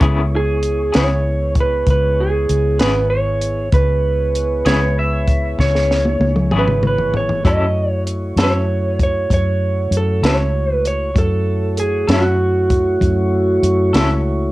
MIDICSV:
0, 0, Header, 1, 7, 480
1, 0, Start_track
1, 0, Key_signature, 4, "minor"
1, 0, Tempo, 619195
1, 10, Time_signature, 12, 3, 24, 8
1, 11254, End_track
2, 0, Start_track
2, 0, Title_t, "Clean electric guitar"
2, 0, Program_c, 0, 27
2, 3616, Note_on_c, 0, 73, 76
2, 3847, Note_off_c, 0, 73, 0
2, 3867, Note_on_c, 0, 76, 67
2, 4326, Note_off_c, 0, 76, 0
2, 4342, Note_on_c, 0, 73, 72
2, 4920, Note_off_c, 0, 73, 0
2, 11254, End_track
3, 0, Start_track
3, 0, Title_t, "Clean electric guitar"
3, 0, Program_c, 1, 27
3, 281, Note_on_c, 1, 68, 81
3, 744, Note_on_c, 1, 73, 81
3, 760, Note_off_c, 1, 68, 0
3, 1187, Note_off_c, 1, 73, 0
3, 1243, Note_on_c, 1, 71, 77
3, 1452, Note_off_c, 1, 71, 0
3, 1476, Note_on_c, 1, 71, 88
3, 1708, Note_on_c, 1, 68, 74
3, 1711, Note_off_c, 1, 71, 0
3, 2149, Note_off_c, 1, 68, 0
3, 2165, Note_on_c, 1, 71, 79
3, 2400, Note_off_c, 1, 71, 0
3, 2403, Note_on_c, 1, 73, 87
3, 2857, Note_off_c, 1, 73, 0
3, 2898, Note_on_c, 1, 71, 76
3, 4305, Note_off_c, 1, 71, 0
3, 5106, Note_on_c, 1, 71, 68
3, 5305, Note_off_c, 1, 71, 0
3, 5326, Note_on_c, 1, 71, 64
3, 5553, Note_off_c, 1, 71, 0
3, 5556, Note_on_c, 1, 73, 69
3, 5779, Note_off_c, 1, 73, 0
3, 5782, Note_on_c, 1, 75, 77
3, 6123, Note_off_c, 1, 75, 0
3, 6123, Note_on_c, 1, 73, 77
3, 6226, Note_off_c, 1, 73, 0
3, 6539, Note_on_c, 1, 73, 89
3, 6964, Note_off_c, 1, 73, 0
3, 7003, Note_on_c, 1, 73, 77
3, 7230, Note_off_c, 1, 73, 0
3, 7240, Note_on_c, 1, 73, 89
3, 7720, Note_off_c, 1, 73, 0
3, 7729, Note_on_c, 1, 69, 72
3, 7952, Note_on_c, 1, 73, 80
3, 7957, Note_off_c, 1, 69, 0
3, 8324, Note_off_c, 1, 73, 0
3, 8324, Note_on_c, 1, 71, 80
3, 8421, Note_off_c, 1, 71, 0
3, 8430, Note_on_c, 1, 73, 77
3, 8668, Note_off_c, 1, 73, 0
3, 8670, Note_on_c, 1, 69, 81
3, 9141, Note_off_c, 1, 69, 0
3, 9144, Note_on_c, 1, 68, 68
3, 9362, Note_off_c, 1, 68, 0
3, 9401, Note_on_c, 1, 66, 63
3, 10795, Note_off_c, 1, 66, 0
3, 11254, End_track
4, 0, Start_track
4, 0, Title_t, "Tonewheel organ"
4, 0, Program_c, 2, 16
4, 7, Note_on_c, 2, 64, 59
4, 9, Note_on_c, 2, 59, 54
4, 17, Note_on_c, 2, 68, 55
4, 19, Note_on_c, 2, 73, 61
4, 2862, Note_off_c, 2, 64, 0
4, 2864, Note_off_c, 2, 59, 0
4, 2868, Note_off_c, 2, 68, 0
4, 2869, Note_off_c, 2, 73, 0
4, 2891, Note_on_c, 2, 64, 58
4, 2898, Note_on_c, 2, 68, 58
4, 2899, Note_on_c, 2, 73, 58
4, 2904, Note_on_c, 2, 59, 56
4, 5743, Note_off_c, 2, 64, 0
4, 5747, Note_off_c, 2, 68, 0
4, 5747, Note_off_c, 2, 73, 0
4, 5750, Note_off_c, 2, 59, 0
4, 5756, Note_on_c, 2, 57, 57
4, 5762, Note_on_c, 2, 66, 54
4, 5764, Note_on_c, 2, 64, 54
4, 5766, Note_on_c, 2, 73, 57
4, 8614, Note_off_c, 2, 57, 0
4, 8617, Note_off_c, 2, 66, 0
4, 8618, Note_off_c, 2, 64, 0
4, 8619, Note_off_c, 2, 73, 0
4, 8635, Note_on_c, 2, 66, 56
4, 8637, Note_on_c, 2, 73, 56
4, 8640, Note_on_c, 2, 57, 56
4, 8642, Note_on_c, 2, 64, 59
4, 11254, Note_off_c, 2, 57, 0
4, 11254, Note_off_c, 2, 64, 0
4, 11254, Note_off_c, 2, 66, 0
4, 11254, Note_off_c, 2, 73, 0
4, 11254, End_track
5, 0, Start_track
5, 0, Title_t, "Clean electric guitar"
5, 0, Program_c, 3, 27
5, 1, Note_on_c, 3, 49, 68
5, 9, Note_on_c, 3, 59, 68
5, 16, Note_on_c, 3, 64, 75
5, 18, Note_on_c, 3, 68, 73
5, 150, Note_off_c, 3, 49, 0
5, 153, Note_off_c, 3, 59, 0
5, 157, Note_off_c, 3, 64, 0
5, 158, Note_off_c, 3, 68, 0
5, 717, Note_on_c, 3, 68, 63
5, 721, Note_on_c, 3, 59, 58
5, 724, Note_on_c, 3, 64, 56
5, 732, Note_on_c, 3, 49, 47
5, 868, Note_off_c, 3, 68, 0
5, 870, Note_off_c, 3, 59, 0
5, 872, Note_off_c, 3, 64, 0
5, 875, Note_off_c, 3, 49, 0
5, 2175, Note_on_c, 3, 68, 53
5, 2187, Note_on_c, 3, 64, 55
5, 2188, Note_on_c, 3, 59, 51
5, 2190, Note_on_c, 3, 49, 46
5, 2318, Note_off_c, 3, 68, 0
5, 2324, Note_off_c, 3, 59, 0
5, 2324, Note_off_c, 3, 64, 0
5, 2325, Note_off_c, 3, 49, 0
5, 3606, Note_on_c, 3, 68, 68
5, 3612, Note_on_c, 3, 64, 62
5, 3619, Note_on_c, 3, 49, 50
5, 3619, Note_on_c, 3, 59, 59
5, 3754, Note_off_c, 3, 68, 0
5, 3757, Note_off_c, 3, 64, 0
5, 3760, Note_off_c, 3, 49, 0
5, 3760, Note_off_c, 3, 59, 0
5, 5053, Note_on_c, 3, 68, 53
5, 5062, Note_on_c, 3, 59, 49
5, 5063, Note_on_c, 3, 64, 50
5, 5069, Note_on_c, 3, 49, 46
5, 5197, Note_off_c, 3, 68, 0
5, 5201, Note_off_c, 3, 59, 0
5, 5202, Note_off_c, 3, 64, 0
5, 5205, Note_off_c, 3, 49, 0
5, 5777, Note_on_c, 3, 54, 59
5, 5785, Note_on_c, 3, 61, 59
5, 5788, Note_on_c, 3, 64, 63
5, 5789, Note_on_c, 3, 69, 63
5, 5919, Note_off_c, 3, 54, 0
5, 5923, Note_off_c, 3, 61, 0
5, 5925, Note_off_c, 3, 64, 0
5, 5925, Note_off_c, 3, 69, 0
5, 6496, Note_on_c, 3, 69, 60
5, 6503, Note_on_c, 3, 64, 53
5, 6509, Note_on_c, 3, 61, 50
5, 6515, Note_on_c, 3, 54, 46
5, 6638, Note_off_c, 3, 69, 0
5, 6642, Note_off_c, 3, 64, 0
5, 6645, Note_off_c, 3, 61, 0
5, 6647, Note_off_c, 3, 54, 0
5, 7932, Note_on_c, 3, 64, 50
5, 7932, Note_on_c, 3, 69, 62
5, 7943, Note_on_c, 3, 54, 47
5, 7946, Note_on_c, 3, 61, 46
5, 8076, Note_off_c, 3, 64, 0
5, 8076, Note_off_c, 3, 69, 0
5, 8081, Note_off_c, 3, 54, 0
5, 8083, Note_off_c, 3, 61, 0
5, 9361, Note_on_c, 3, 69, 57
5, 9374, Note_on_c, 3, 64, 60
5, 9375, Note_on_c, 3, 61, 55
5, 9384, Note_on_c, 3, 54, 49
5, 9510, Note_off_c, 3, 69, 0
5, 9517, Note_off_c, 3, 61, 0
5, 9517, Note_off_c, 3, 64, 0
5, 9521, Note_off_c, 3, 54, 0
5, 10800, Note_on_c, 3, 69, 65
5, 10809, Note_on_c, 3, 61, 56
5, 10811, Note_on_c, 3, 64, 67
5, 10820, Note_on_c, 3, 54, 57
5, 10950, Note_off_c, 3, 69, 0
5, 10955, Note_off_c, 3, 61, 0
5, 10956, Note_off_c, 3, 64, 0
5, 10960, Note_off_c, 3, 54, 0
5, 11254, End_track
6, 0, Start_track
6, 0, Title_t, "Fingered electric bass"
6, 0, Program_c, 4, 33
6, 9, Note_on_c, 4, 37, 92
6, 700, Note_off_c, 4, 37, 0
6, 740, Note_on_c, 4, 37, 88
6, 1425, Note_off_c, 4, 37, 0
6, 1449, Note_on_c, 4, 37, 83
6, 1900, Note_off_c, 4, 37, 0
6, 1933, Note_on_c, 4, 37, 79
6, 2154, Note_off_c, 4, 37, 0
6, 2179, Note_on_c, 4, 32, 73
6, 2865, Note_off_c, 4, 32, 0
6, 2888, Note_on_c, 4, 37, 88
6, 3580, Note_off_c, 4, 37, 0
6, 3612, Note_on_c, 4, 37, 90
6, 4301, Note_off_c, 4, 37, 0
6, 4328, Note_on_c, 4, 37, 85
6, 4779, Note_off_c, 4, 37, 0
6, 4805, Note_on_c, 4, 37, 78
6, 5029, Note_off_c, 4, 37, 0
6, 5051, Note_on_c, 4, 32, 69
6, 5741, Note_off_c, 4, 32, 0
6, 5774, Note_on_c, 4, 42, 90
6, 6462, Note_off_c, 4, 42, 0
6, 6483, Note_on_c, 4, 42, 92
6, 7176, Note_off_c, 4, 42, 0
6, 7210, Note_on_c, 4, 42, 83
6, 7660, Note_off_c, 4, 42, 0
6, 7683, Note_on_c, 4, 42, 81
6, 7908, Note_off_c, 4, 42, 0
6, 7923, Note_on_c, 4, 37, 79
6, 8616, Note_off_c, 4, 37, 0
6, 8648, Note_on_c, 4, 42, 85
6, 9338, Note_off_c, 4, 42, 0
6, 9368, Note_on_c, 4, 42, 87
6, 10058, Note_off_c, 4, 42, 0
6, 10083, Note_on_c, 4, 42, 86
6, 10536, Note_off_c, 4, 42, 0
6, 10563, Note_on_c, 4, 42, 78
6, 10788, Note_off_c, 4, 42, 0
6, 10804, Note_on_c, 4, 37, 75
6, 11254, Note_off_c, 4, 37, 0
6, 11254, End_track
7, 0, Start_track
7, 0, Title_t, "Drums"
7, 7, Note_on_c, 9, 42, 65
7, 8, Note_on_c, 9, 36, 86
7, 84, Note_off_c, 9, 42, 0
7, 85, Note_off_c, 9, 36, 0
7, 487, Note_on_c, 9, 42, 50
7, 564, Note_off_c, 9, 42, 0
7, 726, Note_on_c, 9, 42, 65
7, 736, Note_on_c, 9, 38, 92
7, 804, Note_off_c, 9, 42, 0
7, 814, Note_off_c, 9, 38, 0
7, 1204, Note_on_c, 9, 42, 49
7, 1206, Note_on_c, 9, 36, 69
7, 1282, Note_off_c, 9, 42, 0
7, 1283, Note_off_c, 9, 36, 0
7, 1446, Note_on_c, 9, 42, 60
7, 1447, Note_on_c, 9, 36, 68
7, 1524, Note_off_c, 9, 42, 0
7, 1525, Note_off_c, 9, 36, 0
7, 1932, Note_on_c, 9, 42, 55
7, 2010, Note_off_c, 9, 42, 0
7, 2166, Note_on_c, 9, 42, 67
7, 2176, Note_on_c, 9, 38, 84
7, 2244, Note_off_c, 9, 42, 0
7, 2254, Note_off_c, 9, 38, 0
7, 2647, Note_on_c, 9, 42, 49
7, 2725, Note_off_c, 9, 42, 0
7, 2887, Note_on_c, 9, 42, 68
7, 2888, Note_on_c, 9, 36, 92
7, 2964, Note_off_c, 9, 42, 0
7, 2965, Note_off_c, 9, 36, 0
7, 3373, Note_on_c, 9, 42, 50
7, 3451, Note_off_c, 9, 42, 0
7, 3610, Note_on_c, 9, 42, 67
7, 3620, Note_on_c, 9, 38, 89
7, 3688, Note_off_c, 9, 42, 0
7, 3698, Note_off_c, 9, 38, 0
7, 4090, Note_on_c, 9, 42, 51
7, 4091, Note_on_c, 9, 36, 65
7, 4167, Note_off_c, 9, 42, 0
7, 4168, Note_off_c, 9, 36, 0
7, 4331, Note_on_c, 9, 36, 67
7, 4339, Note_on_c, 9, 38, 46
7, 4408, Note_off_c, 9, 36, 0
7, 4416, Note_off_c, 9, 38, 0
7, 4459, Note_on_c, 9, 38, 42
7, 4536, Note_off_c, 9, 38, 0
7, 4581, Note_on_c, 9, 38, 53
7, 4658, Note_off_c, 9, 38, 0
7, 4691, Note_on_c, 9, 48, 49
7, 4769, Note_off_c, 9, 48, 0
7, 4812, Note_on_c, 9, 48, 64
7, 4889, Note_off_c, 9, 48, 0
7, 4929, Note_on_c, 9, 47, 56
7, 5007, Note_off_c, 9, 47, 0
7, 5049, Note_on_c, 9, 47, 63
7, 5126, Note_off_c, 9, 47, 0
7, 5175, Note_on_c, 9, 45, 62
7, 5253, Note_off_c, 9, 45, 0
7, 5293, Note_on_c, 9, 45, 73
7, 5371, Note_off_c, 9, 45, 0
7, 5414, Note_on_c, 9, 43, 60
7, 5492, Note_off_c, 9, 43, 0
7, 5533, Note_on_c, 9, 43, 75
7, 5611, Note_off_c, 9, 43, 0
7, 5653, Note_on_c, 9, 43, 69
7, 5731, Note_off_c, 9, 43, 0
7, 5774, Note_on_c, 9, 36, 85
7, 5776, Note_on_c, 9, 42, 62
7, 5852, Note_off_c, 9, 36, 0
7, 5854, Note_off_c, 9, 42, 0
7, 6255, Note_on_c, 9, 42, 53
7, 6333, Note_off_c, 9, 42, 0
7, 6491, Note_on_c, 9, 42, 69
7, 6501, Note_on_c, 9, 38, 96
7, 6569, Note_off_c, 9, 42, 0
7, 6579, Note_off_c, 9, 38, 0
7, 6972, Note_on_c, 9, 36, 72
7, 6973, Note_on_c, 9, 42, 57
7, 7050, Note_off_c, 9, 36, 0
7, 7050, Note_off_c, 9, 42, 0
7, 7212, Note_on_c, 9, 36, 67
7, 7215, Note_on_c, 9, 42, 69
7, 7289, Note_off_c, 9, 36, 0
7, 7293, Note_off_c, 9, 42, 0
7, 7691, Note_on_c, 9, 42, 56
7, 7769, Note_off_c, 9, 42, 0
7, 7935, Note_on_c, 9, 42, 68
7, 7945, Note_on_c, 9, 38, 86
7, 8013, Note_off_c, 9, 42, 0
7, 8023, Note_off_c, 9, 38, 0
7, 8412, Note_on_c, 9, 42, 51
7, 8490, Note_off_c, 9, 42, 0
7, 8649, Note_on_c, 9, 36, 90
7, 8651, Note_on_c, 9, 42, 63
7, 8726, Note_off_c, 9, 36, 0
7, 8728, Note_off_c, 9, 42, 0
7, 9127, Note_on_c, 9, 42, 50
7, 9205, Note_off_c, 9, 42, 0
7, 9370, Note_on_c, 9, 42, 66
7, 9380, Note_on_c, 9, 38, 90
7, 9447, Note_off_c, 9, 42, 0
7, 9457, Note_off_c, 9, 38, 0
7, 9847, Note_on_c, 9, 36, 69
7, 9847, Note_on_c, 9, 42, 54
7, 9924, Note_off_c, 9, 42, 0
7, 9925, Note_off_c, 9, 36, 0
7, 10087, Note_on_c, 9, 36, 63
7, 10092, Note_on_c, 9, 42, 61
7, 10165, Note_off_c, 9, 36, 0
7, 10169, Note_off_c, 9, 42, 0
7, 10570, Note_on_c, 9, 42, 57
7, 10647, Note_off_c, 9, 42, 0
7, 10809, Note_on_c, 9, 42, 66
7, 10819, Note_on_c, 9, 38, 92
7, 10886, Note_off_c, 9, 42, 0
7, 10897, Note_off_c, 9, 38, 0
7, 11254, End_track
0, 0, End_of_file